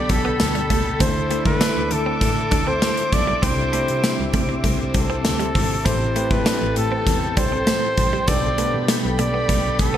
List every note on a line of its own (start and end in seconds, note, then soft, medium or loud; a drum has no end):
0.00 0.70 G2 medium
0.00 1.02 B2 medium
0.00 0.72 D3 medium
0.00 0.68 G3 medium
0.00 1.02 B3 medium
0.00 1.00 D4 medium
0.00 1.03 G4 medium
0.00 1.01 A4 medium
0.00 3.40 A4 medium
0.00 0.12 D5 loud
0.00 0.97 G5 medium
0.00 0.98 B5 medium
0.09 0.32 B1 medium
0.09 1.02 A4 loud
0.09 kick medium
0.09 closed hi-hat medium
0.25 0.35 B3 medium
0.39 0.62 D2 medium
0.39 muted clean electric guitar stroke soft
0.39 snare loud
0.39 closed hi-hat medium
0.39 tambourine medium
0.55 0.65 G3 medium
0.55 closed hi-hat soft
0.70 0.93 C#2 medium
0.70 0.98 D3 soft
0.70 1.00 G3 medium
0.70 0.80 A3 medium
0.70 kick medium
0.70 closed hi-hat medium
0.99 1.23 D2 loud
0.99 2.21 D3 medium
0.99 1.87 D3 medium
0.99 1.28 A3 medium
0.99 2.21 A3 medium
0.99 1.11 C4 medium
0.99 1.29 D4 medium
0.99 1.29 E4 medium
0.99 1.29 A4 medium
0.99 1.46 C5 loud
0.99 5.82 E5 medium
0.99 5.82 D6 medium
0.99 kick loud
0.99 closed hi-hat loud
1.04 2.23 D4 medium
1.30 2.44 A3 medium
1.30 1.41 A3 medium
1.30 2.44 D4 medium
1.30 2.44 E4 medium
1.30 2.44 A4 medium
1.30 closed hi-hat medium
1.46 1.57 D3 loud
1.46 1.94 B4 loud
1.46 muted clean electric guitar stroke soft
1.46 kick medium
1.61 1.71 D4 medium
1.61 snare loud
1.61 closed hi-hat medium
1.61 tambourine medium
1.76 1.87 D2 loud
1.91 2.21 D3 loud
1.91 2.70 A4 loud
1.91 muted clean electric guitar stroke soft
1.91 closed hi-hat medium
2.06 2.16 C4 medium
2.21 2.44 A2 medium
2.21 3.41 D3 medium
2.21 3.13 A3 medium
2.21 3.12 D4 medium
2.21 muted clean electric guitar stroke soft
2.21 kick medium
2.21 closed hi-hat medium
2.51 2.75 D2 medium
2.51 2.62 D4 medium
2.51 kick medium
2.51 closed hi-hat medium
2.67 2.77 C4 medium
2.67 3.15 C5 loud
2.82 2.92 A3 medium
2.82 snare loud
2.82 closed hi-hat medium
2.82 tambourine medium
2.97 muted clean electric guitar stroke soft
2.97 closed hi-hat soft
3.12 3.35 B1 medium
3.12 3.44 A3 soft
3.12 3.43 D4 soft
3.12 3.44 D5 medium
3.12 kick medium
3.12 closed hi-hat medium
3.27 3.37 G3 medium
3.42 3.66 C2 loud
3.42 4.63 C3 medium
3.42 4.30 C3 medium
3.42 4.64 G3 medium
3.42 3.52 C4 medium
3.42 3.71 C4 medium
3.42 3.71 D4 medium
3.42 3.71 E4 medium
3.42 3.72 G4 medium
3.42 4.64 C5 loud
3.42 5.83 C5 medium
3.42 kick loud
3.42 closed hi-hat loud
3.46 4.65 C4 medium
3.73 3.83 A3 medium
3.73 4.86 C4 medium
3.73 4.86 D4 medium
3.73 4.86 E4 medium
3.73 4.87 G4 medium
3.73 closed hi-hat medium
3.88 4.00 C3 medium
3.88 muted clean electric guitar stroke soft
3.88 closed hi-hat soft
4.03 muted clean electric guitar stroke soft
4.03 snare loud
4.03 closed hi-hat medium
4.03 tambourine medium
4.18 4.30 C2 loud
4.33 4.57 C3 loud
4.33 4.44 A3 medium
4.33 kick medium
4.33 closed hi-hat medium
4.49 4.59 C4 medium
4.64 4.87 C2 medium
4.64 5.55 C3 medium
4.64 5.57 G3 medium
4.64 4.74 A3 medium
4.64 5.54 C4 loud
4.64 kick medium
4.64 closed hi-hat medium
4.79 muted clean electric guitar stroke soft
4.94 5.17 C2 loud
4.94 5.87 A4 medium
4.94 kick medium
4.94 closed hi-hat medium
5.10 5.20 C4 medium
5.24 5.47 D2 medium
5.24 muted clean electric guitar stroke soft
5.24 snare medium
5.24 closed hi-hat medium
5.24 tambourine medium
5.40 5.50 G3 medium
5.40 closed hi-hat soft
5.55 5.78 G#1 medium
5.55 5.86 G3 soft
5.55 5.65 A3 medium
5.55 5.85 C4 medium
5.55 kick medium
5.55 open hi-hat medium
5.85 6.08 A1 loud
5.85 6.44 A2 medium
5.85 6.73 A2 medium
5.85 6.45 E3 medium
5.85 6.47 A3 medium
5.85 6.14 C4 medium
5.85 5.95 C4 medium
5.85 6.14 E4 medium
5.85 6.14 G4 medium
5.85 8.26 A4 medium
5.85 6.14 A4 medium
5.85 6.34 C5 loud
5.85 9.97 G5 medium
5.85 8.26 A5 loud
5.85 kick loud
5.85 closed hi-hat loud
6.16 6.26 A3 medium
6.16 7.29 C4 medium
6.16 7.29 E4 medium
6.16 7.29 G4 medium
6.16 7.29 B4 medium
6.16 closed hi-hat medium
6.30 6.42 A2 loud
6.30 6.77 B4 medium
6.30 muted clean electric guitar stroke soft
6.30 kick medium
6.45 7.05 A2 medium
6.45 7.06 E3 medium
6.45 7.08 A3 medium
6.45 6.56 D4 medium
6.45 snare loud
6.45 closed hi-hat medium
6.45 tambourine medium
6.61 6.76 A1 loud
6.76 6.99 A2 loud
6.76 7.34 A4 loud
6.76 muted clean electric guitar stroke soft
6.76 closed hi-hat medium
6.92 7.01 C4 medium
7.06 7.29 E2 loud
7.06 7.97 A2 medium
7.06 7.98 E3 medium
7.06 7.96 A3 medium
7.06 muted clean electric guitar stroke soft
7.06 kick medium
7.06 closed hi-hat medium
7.37 7.60 C2 medium
7.37 7.47 D4 medium
7.37 8.30 C5 loud
7.37 kick medium
7.37 closed hi-hat medium
7.52 7.62 C4 medium
7.67 7.77 A3 medium
7.67 snare loud
7.67 closed hi-hat medium
7.67 tambourine medium
7.83 muted clean electric guitar stroke soft
7.97 8.20 A#1 medium
7.97 8.29 E3 soft
7.97 8.28 A3 soft
7.97 kick medium
7.97 closed hi-hat medium
8.13 8.23 G3 medium
8.27 8.51 B1 loud
8.27 9.47 G2 medium
8.27 9.15 B2 medium
8.27 9.49 D3 medium
8.27 8.56 B3 medium
8.27 8.38 B3 medium
8.27 8.56 D4 medium
8.27 8.56 G4 medium
8.27 9.97 A4 medium
8.27 8.57 A4 medium
8.27 8.89 D5 loud
8.27 9.97 B5 loud
8.27 kick loud
8.27 closed hi-hat medium
8.31 9.49 G3 medium
8.58 8.68 A3 medium
8.58 9.71 B3 medium
8.58 9.71 D4 medium
8.58 9.71 G4 medium
8.58 9.72 B4 medium
8.58 closed hi-hat medium
8.73 8.85 B2 loud
8.73 muted clean electric guitar stroke soft
8.88 muted clean electric guitar stroke soft
8.88 snare loud
8.88 closed hi-hat loud
8.88 tambourine medium
9.04 9.15 B1 medium
9.19 9.42 B2 medium
9.19 9.29 A3 medium
9.19 9.76 D5 loud
9.19 closed hi-hat medium
9.34 9.44 B3 medium
9.49 9.72 B1 loud
9.49 9.97 G2 medium
9.49 9.97 D3 medium
9.49 9.97 G3 medium
9.49 9.59 A3 medium
9.49 kick medium
9.49 closed hi-hat medium
9.64 muted clean electric guitar stroke soft
9.79 9.97 B1 medium
9.79 9.97 A4 loud
9.79 kick medium
9.79 closed hi-hat medium
9.94 9.97 B3 medium